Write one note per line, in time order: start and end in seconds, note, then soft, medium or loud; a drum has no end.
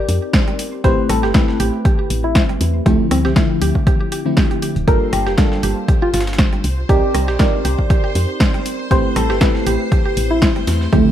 0.00 0.81 C4 loud
0.00 0.81 D#4 medium
0.00 0.81 G4 medium
0.00 0.82 A#4 medium
0.00 0.82 D5 loud
0.09 0.19 F2 medium
0.09 closed hi-hat medium
0.09 open hi-hat loud
0.33 0.43 C5 loud
0.33 kick loud
0.33 snare loud
0.33 closed hi-hat medium
0.48 0.51 G3 medium
0.48 closed hi-hat soft
0.59 closed hi-hat medium
0.59 open hi-hat loud
0.84 0.95 A1 loud
0.84 1.32 A3 medium
0.84 1.32 C4 medium
0.84 1.32 E4 medium
0.84 0.88 G4 loud
0.84 1.32 G4 medium
0.84 1.32 B4 loud
0.84 1.03 C5 medium
0.84 kick loud
0.84 closed hi-hat medium
1.09 1.25 A1 medium
1.09 1.16 G3 loud
1.09 1.29 A4 medium
1.09 cross-stick medium
1.09 closed hi-hat medium
1.09 open hi-hat loud
1.23 1.32 G1 loud
1.23 1.28 G4 loud
1.23 snare soft
1.34 2.83 A3 loud
1.34 2.83 C4 medium
1.34 2.83 E4 medium
1.34 1.38 E4 medium
1.34 2.83 G4 medium
1.34 2.83 B4 loud
1.34 kick loud
1.34 snare loud
1.34 closed hi-hat medium
1.48 snare medium
1.60 1.71 A1 medium
1.60 1.66 G4 loud
1.60 closed hi-hat medium
1.60 open hi-hat loud
1.85 1.89 G4 loud
1.85 kick loud
1.85 closed hi-hat medium
1.99 2.07 G4 medium
2.10 2.57 A1 medium
2.10 closed hi-hat medium
2.10 open hi-hat loud
2.24 2.42 E4 medium
2.35 2.45 C5 loud
2.35 kick loud
2.35 snare loud
2.35 closed hi-hat medium
2.49 2.52 G3 medium
2.49 closed hi-hat soft
2.61 2.81 E2 medium
2.61 closed hi-hat medium
2.61 open hi-hat loud
2.86 2.97 D2 loud
2.86 3.33 D3 medium
2.86 3.34 F3 medium
2.86 3.05 A3 medium
2.86 3.34 A3 medium
2.86 3.34 C4 medium
2.86 3.34 E4 loud
2.86 2.90 G4 loud
2.86 kick loud
2.86 closed hi-hat medium
3.11 3.26 D2 medium
3.11 3.17 G3 loud
3.11 3.20 C4 medium
3.11 cross-stick medium
3.11 closed hi-hat medium
3.11 open hi-hat loud
3.25 3.34 C2 medium
3.25 3.32 C4 medium
3.25 3.30 G4 loud
3.25 snare soft
3.36 4.23 D3 medium
3.36 4.23 F3 medium
3.36 4.23 A3 medium
3.36 4.23 C4 medium
3.36 4.23 E4 loud
3.36 3.40 F4 medium
3.36 kick loud
3.36 snare loud
3.36 closed hi-hat medium
3.62 3.72 D2 medium
3.62 3.68 G4 loud
3.62 closed hi-hat medium
3.62 open hi-hat loud
3.75 kick medium
3.87 3.91 G4 loud
3.87 kick loud
3.87 closed hi-hat medium
4.01 4.08 G4 medium
4.12 4.16 G4 medium
4.12 closed hi-hat medium
4.12 open hi-hat loud
4.25 4.85 D3 medium
4.25 4.85 F3 medium
4.25 4.85 A3 medium
4.25 4.85 C4 medium
4.25 4.85 E4 medium
4.37 4.43 G4 loud
4.37 kick loud
4.37 snare loud
4.37 closed hi-hat medium
4.51 4.54 G4 medium
4.51 closed hi-hat soft
4.62 4.66 G4 medium
4.62 closed hi-hat medium
4.62 open hi-hat loud
4.76 4.85 D1 medium
4.76 closed hi-hat soft
4.87 4.98 G1 loud
4.87 5.35 G3 loud
4.87 5.35 A#3 medium
4.87 5.35 D4 medium
4.87 5.35 F4 medium
4.87 4.91 G4 loud
4.87 5.35 A4 loud
4.87 5.07 A#4 medium
4.87 11.12 C5 medium
4.87 kick loud
4.87 closed hi-hat medium
5.13 5.28 G1 medium
5.13 5.19 G3 loud
5.13 5.32 G4 medium
5.13 cross-stick medium
5.13 closed hi-hat medium
5.13 open hi-hat loud
5.27 5.36 F1 loud
5.27 5.32 G4 loud
5.27 snare soft
5.38 6.62 G3 medium
5.38 6.63 A#3 medium
5.38 6.63 D4 medium
5.38 5.42 F4 medium
5.38 6.63 F4 medium
5.38 6.63 A4 loud
5.38 kick loud
5.38 snare loud
5.38 closed hi-hat medium
5.52 snare medium
5.63 5.74 G1 medium
5.63 5.69 G4 loud
5.63 closed hi-hat medium
5.63 open hi-hat loud
5.88 5.92 G4 loud
5.88 kick loud
5.88 closed hi-hat medium
6.02 6.10 F4 medium
6.02 6.10 G4 medium
6.14 6.60 G1 medium
6.14 6.22 F4 medium
6.14 snare medium
6.14 closed hi-hat medium
6.14 open hi-hat loud
6.21 snare medium
6.21 closed hi-hat medium
6.27 snare medium
6.27 closed hi-hat medium
6.33 snare medium
6.33 closed hi-hat medium
6.38 6.48 C5 loud
6.38 kick loud
6.38 snare loud
6.38 closed hi-hat medium
6.53 6.56 G3 medium
6.53 closed hi-hat soft
6.64 6.84 C2 medium
6.64 closed hi-hat medium
6.64 open hi-hat loud
6.89 7.00 C2 loud
6.89 7.37 C4 loud
6.89 7.37 D#4 medium
6.89 7.28 G4 loud
6.89 7.37 G4 medium
6.89 6.93 G4 loud
6.89 7.37 A#4 medium
6.89 7.37 D5 loud
6.89 kick loud
6.89 closed hi-hat medium
7.14 7.30 C2 medium
7.14 7.21 G3 loud
7.14 cross-stick medium
7.14 closed hi-hat medium
7.14 open hi-hat loud
7.28 7.37 A#1 loud
7.28 7.33 G4 loud
7.28 snare soft
7.39 8.88 C4 loud
7.39 8.88 D#4 medium
7.39 7.43 F4 medium
7.39 8.88 G4 medium
7.39 8.88 A#4 medium
7.39 8.88 D5 loud
7.39 kick loud
7.39 snare loud
7.39 closed hi-hat medium
7.65 7.76 C2 medium
7.65 7.71 G4 loud
7.65 closed hi-hat medium
7.65 open hi-hat loud
7.79 kick medium
7.90 7.94 G4 loud
7.90 kick loud
7.90 closed hi-hat medium
8.04 8.12 G4 medium
8.15 8.26 F2 medium
8.15 closed hi-hat medium
8.15 open hi-hat loud
8.40 8.50 C5 loud
8.40 kick loud
8.40 snare loud
8.40 closed hi-hat medium
8.54 8.57 G3 medium
8.54 closed hi-hat soft
8.66 closed hi-hat medium
8.66 open hi-hat loud
8.91 9.02 A1 loud
8.91 9.39 A3 loud
8.91 9.39 C4 medium
8.91 9.39 E4 medium
8.91 8.95 G4 loud
8.91 9.39 G4 medium
8.91 9.39 B4 loud
8.91 9.10 C5 medium
8.91 kick loud
8.91 closed hi-hat medium
9.16 9.31 A1 medium
9.16 9.22 G3 loud
9.16 9.35 A4 loud
9.16 cross-stick medium
9.16 closed hi-hat medium
9.16 open hi-hat loud
9.30 9.39 G1 loud
9.30 9.35 G4 loud
9.30 snare medium
9.41 10.90 A3 medium
9.41 10.90 C4 medium
9.41 10.90 E4 medium
9.41 9.45 E4 medium
9.41 10.90 G4 medium
9.41 10.90 B4 loud
9.41 kick loud
9.41 snare loud
9.41 closed hi-hat medium
9.55 snare medium
9.67 9.77 A1 medium
9.67 9.73 G4 loud
9.67 closed hi-hat medium
9.67 open hi-hat loud
9.92 9.96 G4 loud
9.92 kick loud
9.92 closed hi-hat medium
10.05 10.13 G4 medium
10.17 10.63 A1 medium
10.17 closed hi-hat medium
10.17 open hi-hat loud
10.31 10.49 E4 medium
10.42 10.52 C5 loud
10.42 kick loud
10.42 snare loud
10.42 closed hi-hat medium
10.56 10.59 G3 medium
10.56 closed hi-hat soft
10.67 10.88 E2 medium
10.67 snare loud
10.67 closed hi-hat medium
10.67 open hi-hat loud
10.81 snare soft
10.92 11.03 D2 loud
10.92 11.12 D3 loud
10.92 11.12 F3 medium
10.92 11.12 A3 medium
10.92 11.12 C4 medium
10.92 11.12 E4 loud
10.92 10.96 G4 loud
10.92 kick loud
10.92 closed hi-hat medium